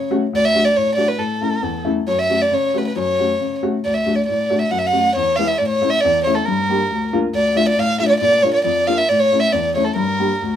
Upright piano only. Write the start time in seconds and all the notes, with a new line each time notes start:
Already playing: C#3
0.11 A3 C#4 F#4
0.33 D2
0.54 A3 D4 F#4
0.76 A2
0.97 A3 D4 F#4
1.18 A2
1.41 A3 C#4 E4
1.62 E2
1.85 A3 C#4 E4
2.07 F#2
2.29 A3 C#4 F#4
2.51 C#3
2.74 A3 C#4 F#4
2.96 F#2
3.19 A3 C#4 F#4
3.40 C#3
3.62 A3 C#4 F#4
3.85 D2
4.06 A3 D4 F#4
4.28 A2
4.50 A3 D4 F#4
4.71 F#2
4.93 A3 C#4 F#4
5.16 E2
5.38 G#3 B3 E4
5.60 A2
5.81 A3 C#4 E4
6.04 E2
6.26 A3 C#4 E4
6.48 G2
6.69 A#3 D4 G4
6.90 D2
7.13 A#3 D4 F4
7.33 D2
7.55 A3 D4 F4
7.77 A2
7.99 A3 D4 F4
8.21 A#2
8.43 A#3 D4 F4
8.64 F2
8.87 A#3 D4 F4
9.10 A2
9.32 A3 C#4 E4
9.53 E2
9.75 A3 C#4 E4
9.96 G2
10.19 A#3 D4 G4
10.42 D2